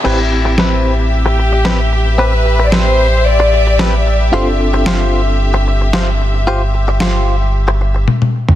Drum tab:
CC |x---------------|----------------|----------------|----------------|
SD |----o-------o---|----o-------o---|----o-------o---|----o-----------|
T1 |----------------|----------------|----------------|------------oo--|
T2 |----------------|----------------|----------------|---------------o|